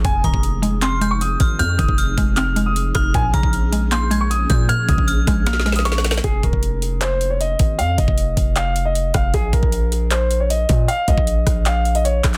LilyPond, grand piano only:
\new Staff \with { instrumentName = "Grand piano" } { \time 4/4 \key f \minor \tempo 4 = 155 aes''8 bes''4. c'''8. des'''16 ees'''4 | f'''8 ees'''4. f'''8. ees'''8. f'''8 | aes''8 bes''4. c'''8. des'''16 ees'''4 | f'''8 ees'''4. f'''8. ees'''16 des'''8 r8 |
aes'8 bes'4. c''8. des''16 ees''4 | f''8 ees''4. f''8. ees''8. f''8 | aes'8 bes'4. c''8. des''16 ees''4 | f''8 ees''4. f''8. ees''16 des''8 r8 | }